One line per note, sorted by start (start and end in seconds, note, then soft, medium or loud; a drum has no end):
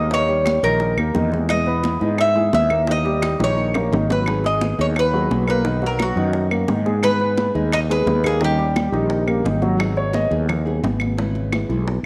0.00 0.58 D#2 medium
0.00 0.11 B3 soft
0.00 0.11 D#4 soft
0.00 0.11 G#4 medium
0.00 0.13 D#5 medium
0.10 0.43 D#3 medium
0.10 0.25 D#3 medium
0.10 0.43 A#3 medium
0.10 0.25 D#4 medium
0.10 0.44 D#4 medium
0.10 0.45 G4 medium
0.10 0.66 C#5 medium
0.10 high bongo medium
0.28 0.57 G3 medium
0.28 0.57 G4 medium
0.28 high bongo soft
0.28 high conga soft
0.44 0.62 D#3 soft
0.44 0.62 A#3 soft
0.44 0.62 D#4 soft
0.44 0.61 G4 medium
0.44 high bongo medium
0.44 high conga medium
0.44 claves medium
0.62 0.95 A#1 medium
0.62 0.92 D#3 medium
0.62 0.80 A#3 medium
0.62 0.80 D#4 medium
0.62 0.92 D#4 medium
0.62 0.79 G4 medium
0.62 1.29 A#4 medium
0.62 high bongo soft
0.62 high conga soft
0.80 muted nylon-string guitar stroke medium
0.80 high bongo medium
0.80 high conga soft
0.97 1.14 D#2 medium
0.97 1.12 A#3 medium
0.97 1.14 A#3 medium
0.97 1.15 D#4 medium
0.97 1.14 G4 medium
0.97 1.12 A#4 medium
0.97 high conga soft
0.97 claves medium
1.15 1.96 E2 medium
1.15 1.49 D#3 soft
1.15 1.29 D#3 medium
1.15 1.49 A#3 soft
1.15 1.29 D#4 medium
1.15 1.50 D#4 soft
1.15 1.50 G4 medium
1.15 high bongo soft
1.15 low bongo medium
1.15 high conga medium
1.32 1.61 G#3 medium
1.32 high bongo soft
1.32 high conga medium
1.49 1.84 B2 medium
1.49 1.83 G#3 medium
1.49 1.84 B3 medium
1.49 1.84 E4 medium
1.49 2.20 D#5 medium
1.49 high bongo medium
1.49 high conga soft
1.49 claves medium
1.66 1.95 B3 medium
1.66 1.96 B4 medium
1.66 high bongo soft
1.66 high conga soft
1.83 2.01 D#3 soft
1.83 2.01 G#3 soft
1.83 2.00 B3 soft
1.83 1.99 E4 medium
1.83 high bongo medium
1.83 high conga medium
2.00 2.50 G#2 medium
2.00 2.18 D#3 medium
2.00 2.18 G#3 medium
2.00 2.18 B3 medium
2.00 2.30 D#4 medium
2.00 2.18 E4 medium
2.00 2.30 D#5 medium
2.00 high bongo soft
2.00 high conga soft
2.18 2.52 E5 medium
2.18 muted nylon-string guitar stroke medium
2.18 high bongo medium
2.18 high conga soft
2.18 claves medium
2.35 2.54 D#3 medium
2.35 2.64 G#3 medium
2.35 2.53 G#3 medium
2.35 2.53 B3 medium
2.35 2.53 E4 medium
2.35 2.65 G#4 medium
2.35 high conga soft
2.53 3.34 D#2 medium
2.53 2.88 G#3 soft
2.53 2.88 B3 medium
2.53 2.88 E4 medium
2.53 2.90 E5 medium
2.53 high bongo soft
2.53 low bongo medium
2.53 high conga medium
2.70 2.85 A#3 medium
2.70 2.85 A#4 medium
2.70 high bongo soft
2.70 high conga medium
2.70 claves medium
2.87 3.02 D#3 medium
2.87 3.20 D#3 medium
2.87 3.22 A#3 medium
2.87 3.02 D#4 medium
2.87 3.22 D#4 medium
2.87 3.22 G4 medium
2.87 3.38 D#5 medium
2.87 high bongo medium
2.87 high conga soft
3.05 3.33 G3 medium
3.05 3.34 G4 medium
3.05 high bongo soft
3.05 high conga soft
3.22 3.39 D#3 soft
3.22 3.40 A#3 soft
3.22 3.39 D#4 medium
3.22 3.39 G4 medium
3.22 high bongo medium
3.22 high conga medium
3.22 claves medium
3.39 3.88 A#1 medium
3.39 3.68 D#3 medium
3.39 3.57 A#3 medium
3.39 3.68 D#4 medium
3.39 3.57 D#4 medium
3.39 3.57 G4 medium
3.39 high bongo medium
3.39 high conga soft
3.44 4.07 C#5 medium
3.57 muted nylon-string guitar stroke medium
3.57 high conga soft
3.74 3.89 A#3 medium
3.74 3.92 A#3 medium
3.74 3.92 D#4 medium
3.74 3.91 G4 medium
3.74 3.89 A#4 medium
3.74 low bongo medium
3.74 high conga soft
3.74 claves medium
3.91 4.72 G#1 medium
3.91 4.06 D#3 medium
3.91 4.25 D#3 soft
3.91 4.27 A#3 medium
3.91 4.06 D#4 medium
3.91 4.27 D#4 medium
3.91 4.27 G4 soft
3.91 low bongo medium
3.91 high conga medium
4.09 4.38 F#3 medium
4.09 4.46 B4 medium
4.09 low bongo medium
4.09 high conga medium
4.26 4.60 D#3 medium
4.26 4.60 F#3 medium
4.26 4.60 B3 medium
4.26 4.61 D#4 medium
4.26 4.61 G#4 medium
4.26 high bongo medium
4.26 high conga soft
4.26 claves medium
4.44 4.72 G#3 medium
4.44 4.73 G#4 medium
4.44 4.77 D#5 medium
4.44 high bongo soft
4.44 high conga soft
4.61 4.78 F#3 soft
4.61 4.78 B3 soft
4.61 4.77 D#4 medium
4.61 4.77 G#4 soft
4.61 high bongo medium
4.61 high conga medium
4.78 5.27 D#2 medium
4.78 4.96 F#3 medium
4.78 4.96 B3 medium
4.78 4.95 D#4 medium
4.78 5.07 D#4 medium
4.78 4.95 G#4 medium
4.78 4.86 C#5 medium
4.78 5.07 D#5 medium
4.78 high bongo soft
4.78 high conga soft
4.96 5.49 B4 medium
4.96 muted nylon-string guitar stroke medium
4.96 high bongo medium
4.96 high conga soft
4.96 claves medium
5.13 5.41 F#3 medium
5.13 5.29 F#3 medium
5.13 5.30 B3 medium
5.13 5.30 D#4 medium
5.13 5.42 F#4 medium
5.13 5.30 G#4 medium
5.13 high conga soft
5.30 6.11 B1 medium
5.30 5.64 F#3 medium
5.30 5.65 B3 soft
5.30 5.65 D#4 medium
5.30 5.65 G#4 medium
5.30 high bongo soft
5.30 low bongo medium
5.30 high conga medium
5.48 5.62 A#3 medium
5.48 5.62 A#4 medium
5.48 5.84 B4 medium
5.48 high bongo soft
5.48 high conga medium
5.48 claves medium
5.65 5.99 B2 medium
5.65 5.79 D#3 medium
5.65 5.99 D#3 medium
5.65 5.99 A#3 medium
5.65 5.99 B3 medium
5.65 5.79 D#4 medium
5.65 6.00 F#4 medium
5.65 high bongo medium
5.65 high conga soft
5.82 6.11 F#3 medium
5.82 6.11 F#4 medium
5.82 high bongo soft
5.82 high conga soft
5.86 6.02 A#4 medium
5.99 6.16 D#3 soft
5.99 6.17 A#3 soft
5.99 6.16 B3 soft
5.99 6.15 F#4 soft
5.99 6.49 F#4 medium
5.99 high bongo medium
5.99 high conga medium
5.99 claves medium
6.16 6.64 F#2 medium
6.16 6.45 D#3 medium
6.16 6.34 D#3 medium
6.16 6.34 A#3 medium
6.16 6.34 B3 medium
6.16 6.45 D#4 medium
6.16 6.33 F#4 medium
6.16 high bongo soft
6.16 high conga soft
6.33 muted nylon-string guitar stroke medium
6.33 high bongo medium
6.33 high conga soft
6.51 6.66 D#3 medium
6.51 6.65 A#3 medium
6.51 6.67 A#3 medium
6.51 6.68 B3 medium
6.51 6.68 F#4 medium
6.51 6.66 A#4 medium
6.51 high conga soft
6.51 claves medium
6.67 7.49 G#2 medium
6.67 7.02 D#3 soft
6.67 6.83 D#3 medium
6.67 7.02 A#3 soft
6.67 7.03 B3 soft
6.67 6.83 D#4 medium
6.67 7.03 F#4 medium
6.67 high bongo soft
6.67 low bongo medium
6.67 high conga medium
6.85 7.14 G#3 medium
6.85 7.14 G#4 medium
6.85 high bongo soft
6.85 high conga medium
7.03 7.37 D#3 medium
7.03 7.36 G#3 medium
7.03 7.37 B3 medium
7.03 7.38 D#4 medium
7.03 7.38 G#4 medium
7.03 7.68 B4 loud
7.03 high bongo medium
7.03 high conga soft
7.03 claves medium
7.20 7.49 B3 medium
7.20 7.49 B4 medium
7.20 high bongo soft
7.20 high conga soft
7.37 7.54 G#3 soft
7.37 7.54 B3 soft
7.37 7.54 D#4 medium
7.37 7.53 G#4 medium
7.37 high bongo medium
7.37 high conga medium
7.55 8.03 D#2 medium
7.55 7.72 G#3 medium
7.55 7.72 B3 medium
7.55 7.83 D#4 medium
7.55 7.72 D#4 medium
7.55 7.71 G#4 medium
7.55 7.84 D#5 medium
7.55 high bongo soft
7.55 high conga soft
7.72 7.78 D#5 loud
7.72 muted nylon-string guitar stroke medium
7.72 high bongo medium
7.72 high conga soft
7.72 claves medium
7.89 8.18 G#3 medium
7.89 8.06 G#3 soft
7.89 8.07 B3 medium
7.89 8.06 D#4 medium
7.89 8.06 G#4 medium
7.89 8.18 G#4 medium
7.89 8.26 B4 medium
7.89 high conga soft
8.06 8.87 D#2 medium
8.06 8.40 G#3 soft
8.06 8.41 B3 soft
8.06 8.41 D#4 medium
8.06 8.42 G#4 medium
8.06 high bongo soft
8.06 low bongo medium
8.06 high conga medium
8.24 8.38 A#3 medium
8.24 8.43 G#4 medium
8.24 8.38 A#4 medium
8.24 high bongo soft
8.24 high conga medium
8.24 claves medium
8.41 8.74 D#3 medium
8.41 8.55 D#3 medium
8.41 8.74 G3 medium
8.41 8.75 C#4 medium
8.41 8.56 D#4 medium
8.41 8.76 G4 medium
8.41 9.42 G4 medium
8.41 high bongo medium
8.41 high conga soft
8.58 8.86 G3 medium
8.58 8.87 G4 medium
8.58 high bongo soft
8.58 high conga soft
8.75 8.92 D#3 soft
8.75 8.92 G3 medium
8.75 8.92 C#4 medium
8.75 8.91 G4 medium
8.75 high bongo medium
8.75 high conga medium
8.75 claves medium
8.92 9.41 A#1 medium
8.92 9.21 D#3 medium
8.92 9.09 G3 medium
8.92 9.10 C#4 medium
8.92 9.21 D#4 medium
8.92 9.09 G4 medium
8.92 high bongo soft
8.92 high conga soft
9.10 muted nylon-string guitar stroke medium
9.10 high bongo medium
9.10 high conga soft
9.27 9.43 G3 soft
9.27 9.41 A#3 medium
9.27 9.44 C#4 medium
9.27 9.44 G4 medium
9.27 9.42 A#4 medium
9.27 high conga soft
9.27 claves medium
9.44 10.25 G#1 medium
9.44 9.77 D#3 soft
9.44 9.59 D#3 medium
9.44 9.78 G3 soft
9.44 9.79 C#4 soft
9.44 9.59 D#4 medium
9.44 9.79 G4 medium
9.44 high bongo soft
9.44 low bongo medium
9.44 high conga medium
9.62 9.76 F#3 medium
9.62 9.76 F#4 medium
9.62 high bongo soft
9.62 high conga medium
9.78 10.12 D#3 medium
9.78 10.12 F#3 medium
9.78 10.12 B3 medium
9.78 10.13 D#4 medium
9.78 10.14 G#4 medium
9.78 high bongo medium
9.78 claves medium
9.97 10.14 C#5 medium
9.97 high bongo soft
9.97 high conga soft
10.13 10.30 F#3 soft
10.13 10.30 B3 soft
10.13 10.30 D#4 medium
10.13 10.29 G#4 soft
10.13 10.31 D#5 medium
10.13 high bongo medium
10.13 high conga medium
10.31 10.79 D#2 medium
10.31 10.47 F#3 medium
10.31 10.47 B3 medium
10.31 10.47 D#4 medium
10.31 10.47 G#4 medium
10.31 high bongo soft
10.31 high conga soft
10.48 muted nylon-string guitar stroke medium
10.48 high bongo medium
10.48 high conga soft
10.48 low conga medium
10.48 claves medium
10.65 10.82 F#3 medium
10.65 10.83 B3 medium
10.65 10.82 D#4 medium
10.65 10.82 G#4 medium
10.65 high conga soft
10.83 11.64 G#1 medium
10.83 11.17 F#3 soft
10.83 11.17 B3 medium
10.83 11.18 D#4 medium
10.83 11.18 G#4 soft
10.83 high bongo soft
10.83 low bongo medium
10.83 high conga medium
11.00 high bongo soft
11.00 high conga medium
11.00 claves medium
11.17 11.51 C#3 medium
11.17 11.51 E3 medium
11.17 11.52 G#3 medium
11.17 11.52 B3 medium
11.17 11.52 E4 medium
11.17 high bongo medium
11.17 high conga soft
11.35 high bongo soft
11.35 high conga soft
11.52 11.68 E3 medium
11.52 11.69 G#3 soft
11.52 11.69 B3 soft
11.52 11.69 E4 medium
11.52 high bongo medium
11.52 high conga medium
11.52 claves medium
11.69 12.01 B1 medium
11.69 11.86 E3 soft
11.69 11.87 G#3 medium
11.69 11.87 B3 medium
11.69 11.86 E4 medium
11.69 high bongo soft
11.69 high conga soft
11.87 muted nylon-string guitar stroke medium
11.87 high bongo medium
11.87 high conga soft